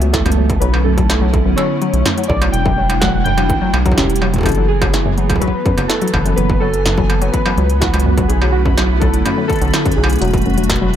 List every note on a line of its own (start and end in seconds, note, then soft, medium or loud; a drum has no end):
0.00 0.23 C#2 loud
0.00 0.58 E3 medium
0.00 0.58 F#3 medium
0.00 0.11 F#3 loud
0.00 8.26 A3 medium
0.00 2.50 B3 medium
0.00 0.60 G#5 medium
0.00 closed hi-hat medium
0.12 0.57 A4 medium
0.12 kick loud
0.12 snare loud
0.12 closed hi-hat medium
0.26 0.59 C#2 medium
0.26 0.31 F#2 loud
0.26 closed hi-hat medium
0.26 struck metal medium
0.32 closed hi-hat medium
0.38 0.49 F#3 medium
0.50 kick loud
0.50 closed hi-hat medium
0.60 1.55 B1 loud
0.60 2.52 D3 medium
0.60 0.71 F#3 loud
0.60 2.52 C#4 medium
0.60 2.52 E4 medium
0.60 0.86 B4 loud
0.60 closed hi-hat medium
0.74 struck metal medium
0.84 0.91 F#2 loud
0.84 1.59 A4 medium
0.98 1.09 F#3 medium
0.98 kick loud
0.98 closed hi-hat medium
1.10 snare loud
1.10 closed hi-hat medium
1.10 struck metal medium
1.22 1.31 F#3 loud
1.34 kick loud
1.34 closed hi-hat soft
1.46 1.51 F#2 loud
1.56 1.69 F#3 medium
1.56 2.25 C#5 medium
1.56 closed hi-hat medium
1.56 struck metal medium
1.82 1.91 F#3 loud
1.82 closed hi-hat soft
1.94 2.04 B1 medium
1.94 closed hi-hat medium
2.06 2.11 F#2 loud
2.06 snare loud
2.06 closed hi-hat medium
2.06 struck metal soft
2.18 2.29 F#3 medium
2.18 closed hi-hat medium
2.24 closed hi-hat medium
2.28 2.50 B1 loud
2.28 2.39 D5 loud
2.28 kick loud
2.42 2.51 F#3 loud
2.42 closed hi-hat medium
2.42 struck metal medium
2.52 3.51 E1 loud
2.52 8.26 E3 medium
2.52 4.44 G3 medium
2.52 4.44 D4 medium
2.52 6.34 E4 medium
2.52 2.97 G5 loud
2.52 closed hi-hat medium
2.66 2.71 F#2 loud
2.66 kick loud
2.78 2.89 F#3 medium
2.90 closed hi-hat medium
2.90 struck metal medium
3.00 3.11 F#3 loud
3.00 3.26 F#5 loud
3.00 kick loud
3.00 snare loud
3.00 closed hi-hat medium
3.24 3.31 F#2 loud
3.24 3.69 G5 loud
3.24 closed hi-hat soft
3.38 3.49 F#3 medium
3.38 closed hi-hat medium
3.38 struck metal medium
3.50 3.60 A1 medium
3.50 kick loud
3.50 closed hi-hat medium
3.62 3.71 F#3 loud
3.74 3.99 B1 loud
3.74 closed hi-hat soft
3.74 struck metal medium
3.86 3.95 F#3 loud
3.86 kick loud
3.86 closed hi-hat medium
3.92 kick loud
3.96 4.43 E1 medium
3.96 4.07 C#4 medium
3.96 4.46 G4 loud
3.96 kick medium
3.96 snare loud
3.96 closed hi-hat medium
4.04 kick medium
4.10 closed hi-hat soft
4.16 closed hi-hat medium
4.22 4.27 F#3 loud
4.22 struck metal soft
4.34 kick soft
4.34 closed hi-hat medium
4.36 kick medium
4.38 kick medium
4.41 kick medium
4.43 5.39 F#1 loud
4.43 10.18 B3 medium
4.43 4.70 A4 loud
4.43 10.96 B4 medium
4.43 10.96 B5 medium
4.43 kick loud
4.46 4.51 F#2 loud
4.46 8.26 F#3 medium
4.46 kick loud
4.46 closed hi-hat medium
4.46 struck metal soft
4.49 closed hi-hat soft
4.52 closed hi-hat soft
4.58 4.69 F#3 medium
4.68 5.37 G#4 loud
4.82 4.91 F#3 loud
4.82 kick loud
4.82 closed hi-hat soft
4.82 struck metal medium
4.94 snare loud
4.94 closed hi-hat medium
5.06 5.11 F#2 loud
5.18 5.29 F#3 medium
5.18 closed hi-hat soft
5.30 kick loud
5.30 closed hi-hat medium
5.30 struck metal medium
5.36 kick medium
5.40 5.51 F#3 loud
5.40 5.85 B4 loud
5.40 kick medium
5.40 closed hi-hat medium
5.48 kick medium
5.66 5.71 F#2 loud
5.66 kick loud
5.66 closed hi-hat soft
5.78 5.88 F#1 medium
5.78 5.89 F#3 medium
5.78 closed hi-hat medium
5.78 struck metal soft
5.88 6.38 A4 loud
5.88 snare loud
5.88 closed hi-hat medium
6.02 6.11 F#3 loud
6.02 closed hi-hat soft
6.08 closed hi-hat medium
6.14 6.34 F#1 loud
6.14 kick loud
6.14 struck metal medium
6.26 6.31 F#2 loud
6.26 closed hi-hat medium
6.36 7.31 F#1 loud
6.36 6.49 F#3 medium
6.36 6.62 B4 loud
6.36 8.28 G#5 medium
6.36 closed hi-hat medium
6.50 kick loud
6.60 6.71 F#3 loud
6.60 7.29 A4 loud
6.74 closed hi-hat medium
6.86 6.91 F#2 loud
6.86 snare loud
6.86 closed hi-hat medium
6.98 7.09 F#3 medium
6.98 kick loud
7.10 closed hi-hat soft
7.10 struck metal medium
7.22 7.31 F#3 loud
7.22 closed hi-hat soft
7.32 7.77 B4 loud
7.32 kick loud
7.32 closed hi-hat medium
7.46 7.51 F#2 loud
7.46 struck metal medium
7.58 7.91 C#2 loud
7.58 7.69 F#3 medium
7.58 closed hi-hat soft
7.70 closed hi-hat medium
7.80 7.91 F#3 loud
7.80 8.30 F#4 loud
7.80 kick loud
7.80 snare loud
7.80 closed hi-hat medium
7.94 8.27 C#2 medium
7.94 closed hi-hat soft
7.94 struck metal medium
8.00 closed hi-hat medium
8.06 8.11 F#2 loud
8.18 8.29 F#3 medium
8.18 kick loud
8.18 closed hi-hat soft
8.28 9.23 B1 loud
8.28 10.20 D3 medium
8.28 10.96 A3 medium
8.28 10.20 C#4 medium
8.28 10.20 E4 medium
8.28 8.39 G#4 loud
8.28 closed hi-hat medium
8.42 8.51 F#3 loud
8.42 struck metal medium
8.52 9.02 F#4 loud
8.66 8.71 F#2 loud
8.66 kick loud
8.78 8.89 F#3 medium
8.78 snare loud
8.78 closed hi-hat medium
8.78 struck metal medium
9.00 9.11 F#3 loud
9.00 9.43 A4 loud
9.00 kick loud
9.00 closed hi-hat soft
9.14 closed hi-hat medium
9.26 9.31 F#2 loud
9.26 closed hi-hat medium
9.26 struck metal medium
9.38 9.49 F#3 medium
9.38 9.49 B4 medium
9.48 9.93 A4 loud
9.48 kick loud
9.48 closed hi-hat soft
9.53 closed hi-hat soft
9.56 closed hi-hat soft
9.59 9.72 B1 medium
9.59 closed hi-hat soft
9.62 9.71 F#3 loud
9.62 closed hi-hat medium
9.68 closed hi-hat soft
9.71 snare loud
9.71 closed hi-hat soft
9.74 closed hi-hat medium
9.74 struck metal medium
9.86 9.91 F#2 loud
9.86 kick loud
9.86 closed hi-hat soft
9.92 closed hi-hat medium
9.96 10.18 B1 loud
9.96 10.09 F#3 medium
9.96 10.19 G#4 medium
10.04 struck metal medium
10.10 closed hi-hat soft
10.13 closed hi-hat soft
10.16 closed hi-hat soft
10.19 10.96 E1 loud
10.19 10.96 F#4 medium
10.19 closed hi-hat soft
10.22 10.96 E3 medium
10.22 10.31 F#3 loud
10.22 10.96 G3 medium
10.22 10.96 D4 medium
10.22 10.96 F#4 medium
10.22 closed hi-hat medium
10.28 closed hi-hat soft
10.31 kick loud
10.31 closed hi-hat soft
10.34 closed hi-hat soft
10.38 closed hi-hat soft
10.42 closed hi-hat soft
10.46 10.51 F#2 loud
10.46 closed hi-hat soft
10.50 closed hi-hat soft
10.54 10.69 F#3 medium
10.54 closed hi-hat soft
10.58 closed hi-hat medium
10.64 closed hi-hat soft
10.70 kick loud
10.70 snare loud
10.70 closed hi-hat medium
10.76 closed hi-hat soft
10.82 10.91 F#3 loud